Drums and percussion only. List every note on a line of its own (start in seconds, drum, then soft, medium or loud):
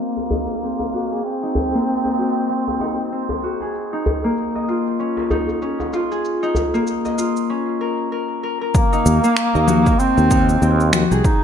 0.00 shaker soft
0.17 djembe slap medium
0.31 djembe slap medium
0.31 djembe bass medium
0.31 shaker medium
0.49 djembe tone medium
0.80 djembe tone medium
0.93 djembe slap soft
0.93 shaker medium
1.25 shaker soft
1.55 djembe slap soft
1.55 djembe bass medium
1.55 shaker medium
1.74 shaker soft
1.87 shaker soft
2.05 djembe slap soft
2.05 shaker soft
2.19 shaker medium
2.37 shaker soft
2.50 shaker soft
2.68 djembe tone medium
2.68 shaker soft
2.80 djembe slap medium
2.80 djembe tone medium
2.80 shaker medium
2.99 shaker soft
3.12 shaker soft
3.29 djembe tone medium
3.29 shaker soft
3.43 shaker medium
3.61 djembe slap soft
3.61 shaker soft
3.75 shaker soft
3.93 shaker soft
4.06 djembe slap soft
4.06 djembe bass medium
4.06 shaker medium
4.24 shaker soft
4.37 shaker soft
4.55 djembe slap soft
4.55 shaker soft
4.68 shaker medium
4.87 shaker soft
5.00 shaker soft
5.17 djembe slap medium
5.17 shaker soft
5.31 djembe slap medium
5.31 djembe bass medium
5.31 shaker medium
5.49 djembe tone medium
5.49 shaker soft
5.62 shaker soft
5.80 djembe tone medium
5.80 shaker soft
5.93 djembe slap soft
5.93 shaker medium
6.12 shaker soft
6.25 shaker soft
6.43 shaker soft
6.55 djembe slap soft
6.55 djembe bass medium
6.55 shaker medium
6.74 shaker soft
6.87 shaker soft
7.05 djembe slap soft
7.05 shaker soft
7.18 shaker medium
7.37 shaker soft
8.75 kick loud
8.75 shaker soft
8.93 shaker soft
9.06 shaker medium
9.24 shaker soft
9.37 finger snap medium
9.37 shaker soft
9.55 shaker soft
9.68 low conga medium
9.68 shaker medium
9.86 kick loud
9.86 shaker soft
10.00 shaker soft
10.18 shaker soft
10.31 kick loud
10.31 shaker medium
10.49 shaker soft
10.62 shaker soft
10.80 shaker soft
10.93 finger snap medium
10.93 low conga medium
10.93 shaker medium
11.12 shaker soft
11.24 kick loud
11.24 shaker soft